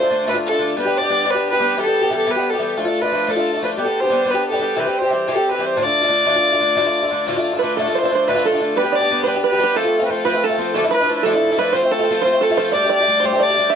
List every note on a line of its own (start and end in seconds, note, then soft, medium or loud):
0.00 0.09 D3 soft
0.00 0.09 A3 soft
0.00 0.10 D4 soft
0.00 0.10 F4 soft
0.00 0.28 C5 medium
0.10 0.26 D3 medium
0.10 0.26 A3 medium
0.10 0.27 D4 medium
0.10 0.26 F4 soft
0.26 0.35 D2 medium
0.26 0.36 A2 medium
0.26 0.36 D3 medium
0.26 0.34 A3 medium
0.26 0.34 D4 medium
0.26 0.33 F4 medium
0.26 0.37 B4 medium
0.34 0.52 D3 soft
0.34 0.52 A3 soft
0.34 0.52 D4 soft
0.34 0.50 F4 soft
0.46 0.75 A4 medium
0.51 0.57 D3 soft
0.51 0.59 A3 soft
0.51 0.60 D4 soft
0.51 0.60 F4 soft
0.58 0.76 D3 medium
0.58 0.76 A3 soft
0.58 0.77 D4 medium
0.58 0.77 F4 medium
0.76 0.86 G3 medium
0.76 0.86 B3 medium
0.76 0.86 D4 medium
0.76 0.84 G4 medium
0.76 0.99 B4 medium
0.85 1.04 B3 soft
0.85 1.02 D4 soft
0.85 1.00 G4 soft
0.98 1.10 G4 soft
0.98 1.32 D5 medium
1.03 1.09 B3 soft
1.03 1.09 D4 soft
1.09 1.24 G3 medium
1.09 1.24 B3 medium
1.09 1.25 D4 medium
1.09 1.26 G4 medium
1.25 1.35 G3 medium
1.25 1.35 B3 medium
1.25 1.35 D4 medium
1.25 1.33 G4 medium
1.30 1.47 B4 medium
1.35 1.53 B3 soft
1.35 1.53 D4 medium
1.35 1.51 G4 soft
1.50 1.61 G4 soft
1.50 1.78 B4 medium
1.54 1.59 B3 soft
1.54 1.60 D4 soft
1.60 1.76 G3 medium
1.60 1.76 B3 medium
1.60 1.77 D4 medium
1.60 1.77 G4 medium
1.77 1.86 E3 medium
1.77 1.86 G3 medium
1.77 1.86 B3 medium
1.77 1.85 G4 medium
1.82 2.11 A4 loud
1.86 2.04 G3 soft
1.86 2.02 B3 soft
1.86 2.00 G4 soft
2.02 2.10 G3 soft
2.02 2.11 B3 soft
2.02 2.10 G4 medium
2.10 2.25 E3 medium
2.10 2.26 G3 soft
2.10 2.27 B3 medium
2.10 2.27 G4 medium
2.17 2.33 A4 medium
2.26 2.36 E3 medium
2.26 2.36 G3 soft
2.26 2.37 B3 medium
2.26 2.35 G4 medium
2.31 2.51 B4 medium
2.36 2.55 G3 soft
2.36 2.54 B3 soft
2.36 2.52 G4 soft
2.50 2.61 G4 soft
2.50 2.80 A4 medium
2.55 2.59 G3 soft
2.55 2.60 B3 soft
2.59 2.76 E3 medium
2.59 2.77 G3 medium
2.59 2.77 B3 medium
2.59 2.78 G4 medium
2.77 2.86 F3 medium
2.77 2.86 A3 medium
2.77 2.85 D4 medium
2.77 2.84 F4 medium
2.83 3.03 D4 soft
2.83 3.01 F4 medium
2.83 3.03 A4 medium
2.87 3.04 A3 soft
3.01 3.11 A3 soft
3.01 3.12 D4 soft
3.01 3.11 F4 soft
3.01 3.32 B4 medium
3.12 3.26 F3 medium
3.12 3.26 A3 medium
3.12 3.27 D4 medium
3.12 3.27 F4 medium
3.27 3.36 F3 medium
3.27 3.36 A3 medium
3.27 3.36 D4 medium
3.27 3.35 F4 medium
3.27 3.63 A4 medium
3.36 3.54 A3 soft
3.36 3.53 D4 soft
3.36 3.52 F4 soft
3.53 3.61 A3 soft
3.53 3.62 D4 soft
3.53 3.61 F4 soft
3.61 3.76 F3 medium
3.61 3.78 A3 medium
3.61 3.77 D4 medium
3.61 3.78 F4 medium
3.61 3.71 B4 medium
3.77 3.86 G3 medium
3.77 3.86 B3 medium
3.77 3.85 D4 medium
3.77 3.83 G4 medium
3.81 4.01 G4 soft
3.81 4.02 A4 medium
3.86 4.04 B3 soft
3.86 4.03 D4 soft
4.00 4.11 D4 soft
4.00 4.11 G4 medium
4.00 4.32 C5 loud
4.05 4.10 B3 soft
4.10 4.24 G3 medium
4.10 4.25 B3 medium
4.10 4.26 D4 medium
4.10 4.26 G4 medium
4.25 4.35 G3 medium
4.25 4.36 B3 medium
4.25 4.35 D4 medium
4.25 4.33 G4 medium
4.30 4.51 G4 soft
4.30 4.47 B4 medium
4.36 4.54 B3 soft
4.36 4.53 D4 soft
4.50 4.61 G4 medium
4.50 4.82 A4 medium
4.54 4.59 B3 soft
4.54 4.60 D4 medium
4.59 4.75 G3 soft
4.59 4.76 B3 soft
4.59 4.77 D4 medium
4.59 4.76 G4 medium
4.76 4.86 C3 medium
4.76 4.86 E3 medium
4.76 4.86 G3 medium
4.76 4.86 C4 medium
4.76 4.85 G4 medium
4.80 5.00 B4 medium
4.86 5.04 G3 soft
4.86 5.03 C4 soft
4.86 5.00 G4 soft
4.99 5.10 G4 soft
4.99 5.29 C5 medium
5.04 5.10 G3 soft
5.04 5.11 C4 soft
5.10 5.27 E3 medium
5.10 5.27 G3 medium
5.10 5.27 C4 medium
5.10 5.28 G4 medium
5.27 5.36 C3 medium
5.27 5.36 E3 medium
5.27 5.36 G3 medium
5.27 5.35 C4 medium
5.27 5.34 G4 medium
5.34 5.52 C4 soft
5.34 5.50 G4 soft
5.34 5.47 A4 medium
5.38 5.53 G3 soft
5.51 5.59 G3 soft
5.51 5.59 C4 soft
5.51 5.60 G4 soft
5.51 5.68 B4 medium
5.58 5.76 E3 medium
5.58 5.76 G3 medium
5.58 5.77 C4 medium
5.58 5.77 G4 medium
5.66 5.84 C5 medium
5.76 5.86 D2 medium
5.76 5.86 A2 medium
5.76 5.85 D3 medium
5.76 5.84 A3 medium
5.76 5.84 D4 medium
5.76 5.83 F4 medium
5.82 6.03 D3 soft
5.82 6.03 A3 soft
5.82 6.02 D4 soft
5.82 6.00 F4 soft
5.82 7.47 D5 loud
6.01 6.07 D3 soft
6.01 6.07 A3 soft
6.01 6.09 D4 soft
6.01 6.10 F4 soft
6.08 6.25 D3 medium
6.08 6.25 A3 medium
6.08 6.26 D4 medium
6.08 6.26 F4 medium
6.25 6.35 D2 medium
6.25 6.35 A2 medium
6.25 6.36 D3 medium
6.25 6.36 A3 medium
6.25 6.35 D4 medium
6.25 6.35 F4 medium
6.36 6.54 D3 soft
6.36 6.53 A3 soft
6.36 6.53 D4 soft
6.36 6.51 F4 medium
6.52 6.59 D3 soft
6.52 6.60 A3 soft
6.52 6.61 D4 soft
6.52 6.61 F4 medium
6.60 6.76 D3 medium
6.60 6.76 A3 medium
6.60 6.76 D4 medium
6.60 6.77 F4 medium
6.75 6.85 D2 medium
6.75 6.86 A2 medium
6.75 6.86 D3 medium
6.75 6.85 A3 medium
6.75 6.85 D4 medium
6.75 6.83 F4 medium
6.85 7.04 D3 soft
6.85 7.02 A3 soft
6.85 7.02 D4 medium
6.85 7.01 F4 soft
7.02 7.09 D3 soft
7.02 7.11 A3 soft
7.02 7.11 D4 soft
7.02 7.10 F4 soft
7.11 7.27 D3 medium
7.11 7.26 A3 medium
7.11 7.26 D4 medium
7.11 7.28 F4 medium
7.26 7.35 D2 medium
7.26 7.36 A2 medium
7.26 7.36 D3 medium
7.26 7.36 A3 medium
7.26 7.36 D4 medium
7.26 7.35 F4 medium
7.36 7.54 D3 soft
7.36 7.54 A3 soft
7.36 7.53 D4 medium
7.36 7.52 F4 medium
7.53 7.60 D3 soft
7.53 7.61 A3 soft
7.53 7.61 D4 soft
7.53 7.61 F4 soft
7.59 7.77 D3 medium
7.59 7.77 A3 medium
7.59 7.74 B4 medium
7.63 7.78 D4 medium
7.63 7.78 F4 medium
7.63 7.77 B4 medium
7.77 7.86 D2 medium
7.77 7.86 A2 medium
7.77 7.87 D3 medium
7.77 7.87 A3 medium
7.77 7.87 D4 medium
7.77 7.85 F4 medium
7.77 7.93 A4 medium
7.77 8.00 A4 medium
7.87 8.04 D3 soft
7.87 8.03 A3 soft
7.87 8.02 D4 soft
7.87 8.02 F4 soft
7.95 8.04 C5 medium
7.95 8.30 C5 medium
8.03 8.10 D3 soft
8.03 8.11 A3 soft
8.03 8.11 D4 medium
8.03 8.10 F4 medium
8.03 8.14 C5 medium
8.11 8.26 D3 medium
8.11 8.27 A3 medium
8.11 8.27 D4 soft
8.11 8.27 F4 medium
8.15 8.26 C5 medium
8.28 8.36 D2 medium
8.28 8.36 A2 medium
8.28 8.36 D3 medium
8.28 8.36 A3 medium
8.28 8.34 D4 medium
8.28 8.34 F4 medium
8.28 8.44 B4 medium
8.28 8.47 B4 medium
8.35 8.53 D3 soft
8.35 8.53 A3 soft
8.35 8.52 D4 medium
8.35 8.50 F4 medium
8.45 8.77 A4 medium
8.45 8.79 A4 medium
8.52 8.58 D3 soft
8.52 8.60 A3 soft
8.52 8.60 D4 soft
8.52 8.60 F4 soft
8.60 8.75 D3 soft
8.60 8.76 A3 medium
8.60 8.76 D4 soft
8.60 8.77 F4 medium
8.76 8.85 G3 medium
8.76 8.85 B3 medium
8.76 8.84 D4 medium
8.76 8.82 G4 medium
8.76 8.92 B4 medium
8.76 8.97 B4 medium
8.83 9.01 B3 soft
8.83 9.00 D4 soft
8.83 8.99 G4 soft
8.92 9.23 D5 medium
9.00 9.10 B3 soft
9.00 9.10 D4 soft
9.00 9.09 G4 soft
9.10 9.25 G3 soft
9.10 9.25 B3 medium
9.10 9.26 D4 medium
9.10 9.26 G4 medium
9.23 9.35 G3 medium
9.23 9.35 B3 medium
9.23 9.34 G4 medium
9.23 9.41 B4 medium
9.23 9.29 C5 medium
9.27 9.35 D4 medium
9.27 9.45 B4 medium
9.35 9.53 B3 soft
9.35 9.52 D4 medium
9.35 9.51 G4 medium
9.44 9.53 B4 medium
9.44 9.78 B4 medium
9.52 9.58 B3 soft
9.52 9.58 D4 soft
9.52 9.59 G4 soft
9.52 9.62 B4 medium
9.58 9.74 G3 medium
9.58 9.75 B3 medium
9.58 9.75 D4 medium
9.58 9.76 G4 medium
9.64 9.74 B4 medium
9.75 9.84 F3 medium
9.75 9.85 A3 medium
9.75 9.84 C4 medium
9.75 9.83 F4 medium
9.75 10.22 A4 medium
9.75 10.05 A4 medium
9.85 10.00 A3 soft
9.85 10.01 C4 soft
9.85 9.98 F4 soft
9.99 10.09 A3 soft
9.99 10.09 C4 soft
9.99 10.08 F4 soft
10.05 10.23 F3 soft
10.05 10.12 B4 medium
10.10 10.25 A3 medium
10.10 10.24 C4 medium
10.10 10.25 F4 medium
10.10 10.27 A4 medium
10.25 10.34 F3 medium
10.25 10.33 A3 medium
10.25 10.34 C4 medium
10.25 10.32 F4 medium
10.25 10.47 B4 medium
10.25 10.43 B4 medium
10.33 10.49 A3 soft
10.33 10.51 C4 soft
10.33 10.48 F4 soft
10.44 10.73 A4 medium
10.44 10.76 A4 medium
10.50 10.59 A3 soft
10.50 10.58 C4 soft
10.50 10.58 F4 soft
10.57 10.74 F3 soft
10.57 10.74 A3 medium
10.57 10.75 C4 medium
10.57 10.75 F4 medium
10.74 10.84 D2 medium
10.74 10.84 D3 medium
10.74 10.84 F3 medium
10.74 10.84 A3 medium
10.74 10.84 D4 medium
10.74 10.83 E4 medium
10.74 10.91 A4 medium
10.74 10.84 A4 medium
10.84 11.02 F3 soft
10.84 11.01 A3 soft
10.84 11.01 D4 soft
10.84 10.99 E4 medium
10.91 11.15 B4 medium
10.91 11.16 B4 medium
11.01 11.07 F3 soft
11.01 11.08 A3 soft
11.01 11.08 D4 medium
11.01 11.08 E4 soft
11.08 11.24 F3 medium
11.08 11.25 A3 medium
11.08 11.24 D4 medium
11.08 11.26 E4 medium
11.17 11.27 B4 medium
11.23 11.33 D2 medium
11.23 11.33 D3 medium
11.23 11.33 F3 medium
11.23 11.34 A3 medium
11.23 11.34 D4 medium
11.23 11.33 E4 medium
11.23 11.55 A4 medium
11.23 11.60 A4 medium
11.34 11.52 F3 soft
11.34 11.51 A3 soft
11.34 11.51 D4 medium
11.34 11.50 E4 medium
11.51 11.56 F3 soft
11.51 11.57 A3 soft
11.51 11.59 D4 soft
11.51 11.59 E4 soft
11.57 11.72 F3 medium
11.57 11.73 A3 medium
11.57 11.74 D4 medium
11.57 11.75 E4 medium
11.57 11.72 B4 medium
11.57 11.78 B4 medium
11.73 11.82 F3 medium
11.73 11.83 A3 medium
11.73 11.83 C4 medium
11.73 11.81 F4 medium
11.73 11.90 C5 medium
11.73 11.93 C5 medium
11.82 12.00 A3 soft
11.82 12.01 C4 soft
11.82 11.98 F4 soft
11.91 12.21 A4 medium
11.91 12.25 A4 medium
11.99 12.08 A3 medium
11.99 12.09 C4 soft
11.99 12.07 F4 medium
12.09 12.23 F3 soft
12.09 12.25 A3 medium
12.09 12.24 C4 medium
12.09 12.25 F4 medium
12.22 12.33 F3 medium
12.22 12.33 C4 medium
12.22 12.39 C5 medium
12.22 12.45 C5 loud
12.26 12.32 A3 medium
12.26 12.31 F4 medium
12.32 12.50 A3 soft
12.32 12.50 C4 soft
12.32 12.49 F4 soft
12.41 12.56 A4 medium
12.41 12.75 A4 medium
12.50 12.57 A3 soft
12.50 12.57 C4 soft
12.50 12.57 F4 medium
12.57 12.73 F3 medium
12.57 12.73 A3 medium
12.57 12.73 C4 medium
12.57 12.74 F4 medium
12.57 12.72 C5 medium
12.72 12.82 G3 medium
12.72 12.83 A3 medium
12.72 12.83 D4 medium
12.72 12.88 D5 medium
12.72 12.91 D5 medium
12.76 12.82 G4 medium
12.84 13.01 A3 soft
12.84 13.00 D4 soft
12.84 12.98 G4 soft
12.90 13.20 D5 medium
12.90 13.27 D5 loud
13.00 13.07 A3 soft
13.00 13.08 D4 medium
13.00 13.07 G4 medium
13.07 13.23 G3 medium
13.07 13.22 A3 medium
13.07 13.24 D4 medium
13.07 13.24 G4 medium
13.20 13.32 G3 medium
13.20 13.32 A3 medium
13.20 13.38 C5 medium
13.25 13.32 D4 medium
13.25 13.31 G4 medium
13.25 13.44 C5 loud
13.32 13.50 A3 soft
13.32 13.49 D4 soft
13.32 13.49 G4 medium
13.40 13.69 D5 medium
13.40 13.73 D5 loud
13.50 13.57 A3 soft
13.50 13.58 D4 soft
13.50 13.57 G4 soft
13.57 13.73 G3 medium
13.57 13.73 A3 medium
13.57 13.73 D4 medium
13.57 13.74 G4 medium
13.70 13.75 E5 medium